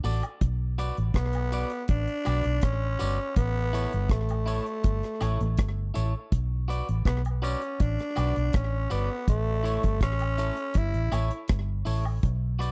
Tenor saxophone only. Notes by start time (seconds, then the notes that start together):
1.15 B3
1.90 D4
2.64 C#4
3.37 B3
4.11 A3
7.06 B3
7.43 C#4
7.81 D4
8.55 C#4
8.92 B3
9.29 A3
10.03 C#4
10.77 E4